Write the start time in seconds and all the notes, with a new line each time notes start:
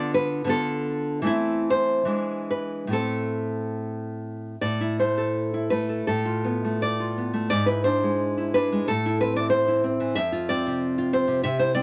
Already playing: D3 B3 F4 D5
0.14 B4
0.44 D3 B3 F4
0.49 A4
1.22 E3 A3 C4
1.27 E4
1.70 C5
2.05 E3 G#3 D4
2.51 B4
2.87 A2 A3
2.92 C4 A4
4.61 A2 D5
4.81 E4
4.99 A3 C5
5.18 A4
5.54 E4
5.70 A3 B4
5.89 A4
6.07 A2 A4
6.25 F4
6.45 B3
6.64 A3
6.82 D5
7.00 F4
7.18 B3
7.33 A3
7.50 G#2 D5
7.66 E4 B4
7.84 D4 C5
8.03 G#3
8.37 E4
8.54 D4 B4
8.72 G#3
8.88 A2 A4
9.06 E4
9.21 C4 B4
9.36 E3 D5
9.50 C5
9.68 E4
9.84 C4
10.00 E3
10.15 F2 E5
10.32 F4
10.49 C4 D5
10.67 C3
10.98 F4
11.13 C4 C5
11.28 C3
11.43 C3 E5
11.59 E4 C5
11.75 C4 D5